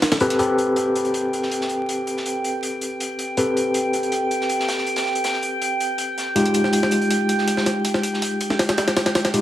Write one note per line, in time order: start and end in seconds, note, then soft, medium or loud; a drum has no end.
0.02 snare loud
0.02 closed hi-hat medium
0.12 snare loud
0.12 closed hi-hat medium
0.20 0.38 C4 medium
0.20 0.38 G4 medium
0.20 0.38 A4 medium
0.20 0.38 B4 medium
0.20 snare soft
0.20 closed hi-hat medium
0.30 snare soft
0.30 closed hi-hat medium
0.39 3.35 C4 medium
0.39 3.35 G4 medium
0.39 3.35 A4 medium
0.39 3.35 B4 medium
0.39 9.41 G5 medium
0.39 closed hi-hat medium
0.58 closed hi-hat medium
0.76 closed hi-hat medium
0.96 closed hi-hat medium
1.05 closed hi-hat soft
1.14 closed hi-hat medium
1.33 closed hi-hat medium
1.42 snare soft
1.51 closed hi-hat medium
1.61 snare soft
1.69 closed hi-hat medium
1.89 closed hi-hat medium
2.07 closed hi-hat medium
2.17 snare soft
2.26 closed hi-hat medium
2.44 closed hi-hat medium
2.63 closed hi-hat medium
2.81 closed hi-hat medium
3.00 closed hi-hat medium
3.19 closed hi-hat medium
3.37 6.34 C4 medium
3.37 6.34 G4 medium
3.37 6.34 A4 medium
3.37 6.34 B4 medium
3.37 closed hi-hat medium
3.57 closed hi-hat medium
3.74 closed hi-hat medium
3.93 closed hi-hat medium
4.03 closed hi-hat soft
4.12 closed hi-hat medium
4.31 closed hi-hat medium
4.41 snare soft
4.49 closed hi-hat medium
4.60 snare soft
4.68 snare loud
4.68 closed hi-hat medium
4.78 snare soft
4.87 closed hi-hat medium
4.96 snare medium
4.96 closed hi-hat medium
5.05 snare soft
5.15 closed hi-hat medium
5.24 snare medium
5.24 closed hi-hat medium
5.33 snare soft
5.43 closed hi-hat medium
5.62 closed hi-hat medium
5.80 closed hi-hat medium
5.98 closed hi-hat medium
6.18 snare soft
6.18 closed hi-hat medium
6.36 9.32 G#3 medium
6.36 9.32 D#4 medium
6.36 9.32 F4 medium
6.36 9.32 G4 medium
6.36 closed hi-hat medium
6.46 closed hi-hat soft
6.54 closed hi-hat medium
6.64 snare soft
6.73 closed hi-hat medium
6.83 snare soft
6.91 closed hi-hat medium
7.01 closed hi-hat soft
7.10 closed hi-hat medium
7.29 closed hi-hat medium
7.38 snare soft
7.48 closed hi-hat medium
7.57 snare medium
7.57 snare soft
7.66 snare soft
7.66 closed hi-hat medium
7.85 closed hi-hat medium
7.94 snare medium
8.03 closed hi-hat medium
8.14 snare soft
8.22 closed hi-hat medium
8.40 closed hi-hat medium
8.50 snare medium
8.59 snare medium
8.59 closed hi-hat medium
8.69 snare medium
8.69 closed hi-hat medium
8.77 snare medium
8.77 closed hi-hat medium
8.88 snare medium
8.88 closed hi-hat medium
8.97 snare loud
8.97 closed hi-hat medium
9.06 snare loud
9.06 closed hi-hat medium
9.15 snare loud
9.15 closed hi-hat medium
9.25 snare loud
9.25 closed hi-hat medium
9.34 9.41 G#3 medium
9.34 9.41 D#4 medium
9.34 9.41 F4 medium
9.34 9.41 G4 medium
9.34 closed hi-hat medium